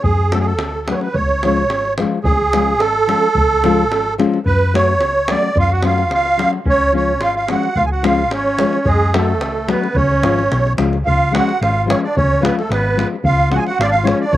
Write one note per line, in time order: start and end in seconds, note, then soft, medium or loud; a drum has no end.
0.03 0.58 F#2 medium
0.03 0.32 G#4 medium
0.03 davul low medium
0.32 0.51 F#3 medium
0.32 0.52 A3 medium
0.32 0.52 C#4 soft
0.32 0.52 F#4 medium
0.32 0.39 A4 medium
0.32 davul high medium
0.40 0.46 G#4 medium
0.45 0.88 A4 medium
0.58 0.92 D2 medium
0.58 davul high medium
0.87 1.07 F#3 medium
0.87 1.07 A3 medium
0.87 1.07 C#4 soft
0.87 1.08 F#4 medium
0.87 0.95 B4 medium
0.87 davul high medium
0.91 1.00 C#5 medium
1.01 1.15 B4 medium
1.01 davul high soft
1.14 1.70 C#2 medium
1.14 1.94 C#5 medium
1.14 davul low medium
1.29 davul high soft
1.43 1.62 F3 medium
1.43 1.63 G#3 medium
1.43 1.62 C#4 medium
1.43 1.63 F4 medium
1.43 davul high medium
1.57 davul high soft
1.70 2.03 G#1 loud
1.70 davul high medium
1.85 davul high soft
1.97 2.17 F3 medium
1.97 2.17 G#3 medium
1.97 2.17 C#4 medium
1.97 2.18 F4 medium
1.97 davul high medium
2.24 2.79 C#2 medium
2.24 2.82 G#4 medium
2.24 davul low loud
2.53 2.72 F3 medium
2.53 2.72 G#3 soft
2.53 2.73 C#4 medium
2.53 2.73 F4 medium
2.53 davul high medium
2.79 3.13 G#1 medium
2.79 4.14 A4 loud
2.79 davul high medium
3.07 3.27 F3 medium
3.07 3.27 G#3 medium
3.07 3.28 C#4 soft
3.07 3.28 F4 medium
3.07 davul high medium
3.24 davul high soft
3.35 3.90 C#2 medium
3.35 davul low medium
3.64 3.83 F3 medium
3.64 3.83 G#3 medium
3.64 3.83 C#4 medium
3.64 3.84 F4 medium
3.64 davul high medium
3.90 4.24 G#1 medium
3.90 davul high medium
4.18 4.37 F3 medium
4.18 4.37 G#3 medium
4.18 4.38 C#4 medium
4.18 4.38 F4 medium
4.18 davul high medium
4.34 davul high soft
4.46 5.01 F#2 medium
4.46 4.75 B4 loud
4.46 davul low medium
4.74 4.93 F#3 medium
4.74 4.92 A3 medium
4.74 4.93 C#4 medium
4.74 4.93 F#4 medium
4.74 5.31 C#5 medium
4.74 davul high medium
5.01 5.34 C#2 loud
5.01 davul high soft
5.28 5.48 F#3 medium
5.28 5.48 A3 medium
5.28 5.49 C#4 soft
5.28 5.49 F#4 medium
5.28 5.58 D5 medium
5.28 davul high medium
5.43 davul high soft
5.55 6.10 F#2 medium
5.55 5.70 F4 medium
5.55 davul low loud
5.60 5.72 F5 medium
5.70 5.84 F#4 medium
5.70 5.85 F#5 medium
5.70 davul high soft
5.83 6.02 F#3 medium
5.83 6.02 A3 medium
5.83 6.02 C#4 medium
5.83 6.10 F4 medium
5.83 6.03 F#4 medium
5.83 6.12 F5 medium
5.83 davul high medium
5.98 davul high soft
6.10 6.44 C#2 medium
6.10 6.51 F4 medium
6.10 6.51 F5 loud
6.10 davul high medium
6.25 davul high soft
6.37 6.57 F#3 medium
6.37 6.57 A3 soft
6.37 6.57 C#4 medium
6.37 6.58 F#4 medium
6.37 davul high medium
6.53 davul high soft
6.65 7.21 C#2 medium
6.65 6.91 C#4 medium
6.65 davul low medium
6.69 6.93 C#5 loud
6.92 7.11 F3 medium
6.92 7.12 G#3 soft
6.92 7.19 C#4 medium
6.92 7.12 C#4 medium
6.92 7.13 F4 medium
6.96 7.23 C#5 medium
7.20 7.54 G#1 medium
7.20 7.33 F4 medium
7.20 7.35 F5 medium
7.20 davul high medium
7.34 7.46 F4 medium
7.34 7.49 F5 medium
7.47 7.67 F3 medium
7.47 7.67 G#3 medium
7.47 7.67 C#4 soft
7.47 7.67 F4 medium
7.47 7.73 F#4 medium
7.47 davul high medium
7.51 7.78 F#5 medium
7.63 davul high soft
7.75 8.30 C#2 medium
7.75 7.86 F4 medium
7.75 7.85 F5 loud
7.75 davul low medium
7.86 7.90 G#4 soft
7.86 7.89 G#5 medium
7.92 8.03 F#4 medium
7.92 8.03 F#5 medium
8.03 8.21 F3 medium
8.03 8.22 G#3 medium
8.03 8.22 C#4 medium
8.03 8.22 F4 medium
8.03 8.30 F4 medium
8.03 8.32 F5 medium
8.03 davul high medium
8.30 8.63 G#1 medium
8.30 8.83 C#4 medium
8.30 8.89 C#5 medium
8.30 davul high medium
8.58 8.76 F3 medium
8.58 8.77 G#3 medium
8.58 8.77 C#4 medium
8.58 8.77 F4 medium
8.58 davul high medium
8.73 davul high soft
8.86 9.40 F#2 medium
8.86 9.12 G#3 medium
8.86 9.14 G#4 loud
8.86 davul low loud
9.14 9.32 F#3 medium
9.14 9.32 A3 medium
9.14 9.32 C#4 medium
9.14 9.32 F#4 medium
9.14 9.70 A4 medium
9.14 davul high medium
9.19 9.67 A3 medium
9.40 9.73 C#2 loud
9.40 davul high medium
9.67 9.86 F#3 medium
9.67 9.86 A3 medium
9.67 9.94 B3 medium
9.67 9.86 C#4 soft
9.67 9.87 F#4 medium
9.67 9.96 B4 medium
9.67 davul high medium
9.84 davul high soft
9.95 10.22 C#2 medium
9.95 10.75 C#4 medium
9.95 10.73 C#5 medium
9.95 davul low loud
10.11 davul high soft
10.22 10.47 G#1 medium
10.22 10.41 F3 medium
10.22 10.41 G#3 medium
10.22 10.42 C#4 medium
10.22 10.42 F4 medium
10.22 davul high medium
10.39 davul high soft
10.52 10.75 B1 medium
10.52 davul high medium
10.67 davul high soft
10.77 11.02 C#2 medium
10.77 10.95 F3 medium
10.77 10.96 G#3 medium
10.77 10.96 C#4 medium
10.77 10.96 F4 medium
10.77 davul high medium
10.93 davul high soft
11.06 11.39 C#2 medium
11.06 11.32 F4 medium
11.06 11.33 F5 medium
11.06 davul low medium
11.31 11.50 F3 medium
11.31 11.50 G#3 medium
11.31 11.51 C#4 medium
11.31 11.51 F4 medium
11.31 11.58 F#4 medium
11.31 11.60 F#5 medium
11.31 davul high medium
11.49 davul high soft
11.61 11.93 G#1 medium
11.61 11.87 F4 medium
11.61 11.86 F5 medium
11.61 davul high medium
11.85 12.04 F3 medium
11.85 12.05 G#3 soft
11.85 12.05 C#4 soft
11.85 12.05 F4 medium
11.85 12.01 C#5 medium
11.90 12.02 C#4 medium
11.90 davul high medium
12.04 12.16 D4 medium
12.04 12.16 D5 medium
12.16 12.49 C#2 medium
12.16 12.42 C#4 medium
12.16 12.43 C#5 medium
12.16 davul low loud
12.41 12.60 F3 medium
12.41 12.60 G#3 medium
12.41 12.60 C#4 medium
12.41 12.60 F4 medium
12.41 12.56 B4 medium
12.45 12.56 B3 medium
12.45 davul high medium
12.58 12.70 A3 soft
12.58 12.70 A4 medium
12.58 davul high soft
12.70 13.03 G#1 medium
12.70 13.10 B3 medium
12.70 13.08 B4 medium
12.70 davul high medium
12.96 13.14 F3 medium
12.96 13.14 G#3 medium
12.96 13.15 C#4 medium
12.96 13.15 F4 medium
12.96 davul high medium
13.24 13.57 C#2 medium
13.24 13.51 F4 medium
13.24 13.50 F5 medium
13.24 davul low medium
13.50 13.69 F3 medium
13.50 13.69 G#3 medium
13.50 13.70 C#4 medium
13.50 13.70 F4 medium
13.50 13.58 F#5 medium
13.50 davul high medium
13.56 13.58 F#4 medium
13.56 13.64 G#4 medium
13.56 13.64 G#5 medium
13.67 13.80 F#4 medium
13.67 13.78 F#5 medium
13.67 davul high soft
13.79 14.12 G#1 medium
13.79 13.90 D5 medium
13.79 13.86 F5 loud
13.79 davul high medium
13.84 13.88 F4 medium
13.89 13.94 D4 medium
13.89 14.05 F5 loud
13.98 14.08 F4 medium
14.03 14.23 F3 medium
14.03 14.23 G#3 medium
14.03 14.24 C#4 medium
14.03 14.24 F4 medium
14.03 14.19 C#5 medium
14.03 davul high medium
14.12 14.22 C#4 medium
14.20 14.34 D5 medium
14.25 14.35 D4 medium
14.31 14.37 C#2 medium
14.31 14.37 C#5 medium
14.31 davul low loud